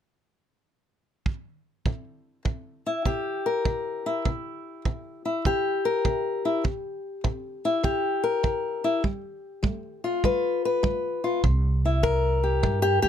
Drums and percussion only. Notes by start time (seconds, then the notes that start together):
1.26 kick
1.86 kick
2.46 kick
3.05 kick
3.65 kick
4.25 kick
4.85 kick
5.45 kick
6.05 kick
6.65 kick
7.25 kick
7.84 kick
8.44 kick
9.04 kick
9.64 kick
10.24 kick
10.84 kick
11.44 kick
12.04 kick
12.63 kick